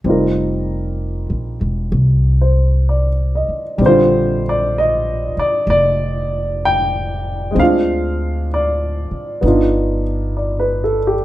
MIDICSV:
0, 0, Header, 1, 4, 480
1, 0, Start_track
1, 0, Key_signature, -2, "major"
1, 0, Tempo, 938967
1, 20, Time_signature, 4, 2, 24, 8
1, 5750, End_track
2, 0, Start_track
2, 0, Title_t, "Grand piano"
2, 0, Program_c, 0, 0
2, 23, Note_on_c, 0, 55, 33
2, 29, Note_on_c, 0, 60, 32
2, 38, Note_on_c, 0, 63, 29
2, 42, Note_on_c, 0, 65, 31
2, 49, Note_on_c, 0, 70, 39
2, 128, Control_c, 0, 64, 127
2, 1234, Note_on_c, 0, 72, 33
2, 1477, Note_on_c, 0, 74, 35
2, 1567, Note_off_c, 0, 72, 0
2, 1714, Note_on_c, 0, 75, 35
2, 1848, Note_off_c, 0, 74, 0
2, 1924, Note_off_c, 0, 55, 0
2, 1932, Note_on_c, 0, 55, 45
2, 1941, Note_off_c, 0, 60, 0
2, 1949, Control_c, 0, 64, 0
2, 1949, Note_on_c, 0, 60, 43
2, 1950, Note_off_c, 0, 63, 0
2, 1952, Note_off_c, 0, 65, 0
2, 1956, Note_off_c, 0, 70, 0
2, 1969, Note_on_c, 0, 50, 43
2, 1973, Note_on_c, 0, 72, 64
2, 1984, Note_on_c, 0, 65, 52
2, 2030, Control_c, 0, 64, 127
2, 2048, Note_off_c, 0, 75, 0
2, 2254, Note_off_c, 0, 72, 0
2, 2296, Note_on_c, 0, 74, 62
2, 2445, Note_off_c, 0, 74, 0
2, 2445, Note_on_c, 0, 75, 63
2, 2731, Note_off_c, 0, 75, 0
2, 2758, Note_on_c, 0, 74, 67
2, 2906, Note_off_c, 0, 74, 0
2, 2914, Note_on_c, 0, 74, 72
2, 3402, Note_on_c, 0, 79, 79
2, 3403, Note_off_c, 0, 74, 0
2, 3839, Note_on_c, 0, 56, 43
2, 3850, Note_off_c, 0, 60, 0
2, 3857, Note_off_c, 0, 55, 0
2, 3858, Note_on_c, 0, 60, 39
2, 3868, Control_c, 0, 64, 0
2, 3876, Note_off_c, 0, 50, 0
2, 3877, Note_on_c, 0, 62, 41
2, 3882, Note_on_c, 0, 77, 72
2, 3883, Note_off_c, 0, 65, 0
2, 3886, Note_off_c, 0, 79, 0
2, 3898, Note_on_c, 0, 65, 48
2, 3966, Control_c, 0, 64, 127
2, 4331, Note_off_c, 0, 77, 0
2, 4365, Note_on_c, 0, 74, 57
2, 4808, Note_off_c, 0, 56, 0
2, 4811, Note_on_c, 0, 59, 42
2, 4815, Note_off_c, 0, 62, 0
2, 4818, Note_off_c, 0, 60, 0
2, 4823, Note_on_c, 0, 62, 36
2, 4827, Control_c, 0, 64, 0
2, 4831, Note_on_c, 0, 63, 36
2, 4833, Note_off_c, 0, 65, 0
2, 4841, Note_on_c, 0, 65, 49
2, 4900, Control_c, 0, 64, 127
2, 5127, Note_off_c, 0, 74, 0
2, 5300, Note_on_c, 0, 74, 36
2, 5416, Note_on_c, 0, 71, 40
2, 5519, Note_off_c, 0, 74, 0
2, 5541, Note_on_c, 0, 69, 41
2, 5619, Note_off_c, 0, 71, 0
2, 5660, Note_on_c, 0, 67, 44
2, 5688, Note_off_c, 0, 69, 0
2, 5750, Note_off_c, 0, 59, 0
2, 5750, Note_off_c, 0, 62, 0
2, 5750, Note_off_c, 0, 63, 0
2, 5750, Note_off_c, 0, 65, 0
2, 5750, Note_off_c, 0, 67, 0
2, 5750, End_track
3, 0, Start_track
3, 0, Title_t, "Upright bass"
3, 0, Program_c, 1, 32
3, 22, Note_on_c, 1, 29, 58
3, 641, Note_off_c, 1, 29, 0
3, 664, Note_on_c, 1, 34, 43
3, 811, Note_off_c, 1, 34, 0
3, 823, Note_on_c, 1, 28, 49
3, 971, Note_off_c, 1, 28, 0
3, 981, Note_on_c, 1, 36, 63
3, 1758, Note_off_c, 1, 36, 0
3, 1934, Note_on_c, 1, 34, 65
3, 2716, Note_off_c, 1, 34, 0
3, 2897, Note_on_c, 1, 29, 62
3, 3839, Note_off_c, 1, 29, 0
3, 3863, Note_on_c, 1, 38, 67
3, 4637, Note_off_c, 1, 38, 0
3, 4818, Note_on_c, 1, 31, 64
3, 5750, Note_off_c, 1, 31, 0
3, 5750, End_track
4, 0, Start_track
4, 0, Title_t, "Muted upright bass strokes"
4, 1782, Note_on_c, 9, 29, 26
4, 1833, Note_off_c, 9, 29, 0
4, 2744, Note_on_c, 9, 29, 29
4, 2796, Note_off_c, 9, 29, 0
4, 4658, Note_on_c, 9, 29, 30
4, 4709, Note_off_c, 9, 29, 0
4, 5750, End_track
0, 0, End_of_file